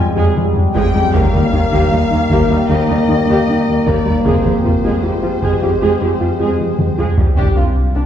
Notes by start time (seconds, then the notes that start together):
Already playing: G3 G#3
0.16 F2 F3 G#3 G#4
0.36 F3
0.56 F2
0.75 F2 F3 G#3 G#4 G5, taiko
0.94 F2 G3 G#3 G4
1.14 D#2 D#3 A#3 G4 F5, taiko
1.33 D#2 D#3 G3 A#3 D#4
1.53 D#2 D#3 A#3 D#4
1.72 D#2 D#3 A#3 G4, taiko
1.92 D#2 G3 D#4
2.11 D#2 D#3 A#3 D#4
2.30 D#2 D#3 A#3 G4, taiko
2.50 D#2 G3 D#4
2.69 D#2 D#3 A#3 G4 D#5
2.89 D#2 D#3 G3 A#3 D#4
3.08 D#2 D#3 A#3 D#4
3.27 D#2 D#3 A#3 G4
3.48 D#3
3.67 D#2
3.86 D#2 D#3 A#3 G4 D5, taiko
4.05 D#2 G3 D#4
4.25 F2 F3 G#3 G4 G#4 C5, taiko
4.45 F2 F3 G3 C4 G4
4.64 F2 F3 F4
4.84 F2 F3 G#3 G#4, taiko
5.03 F2 G3 G#3 F4 G4
5.23 F2 F3 F4
5.42 F2 F3 G#3 G#4, taiko
5.62 F2 G3 F4 G4
5.81 F2 F3 G#3 G#4
6.01 F2 F3 G3 C4 G4
6.20 F2 F3 F4
6.39 F2 F3 G#3 G#4
6.59 F3, taiko high
6.78 F2, taiko high
6.98 F2 F3 G#3 G#4, taiko low-mid
7.17 F2 G3 G#3 G4, taiko low
7.37 C2 C3 D4 G4 C5, taiko
7.56 C2 G3 D4 F4 A#4
7.76 C2
7.94 C2 D4 G4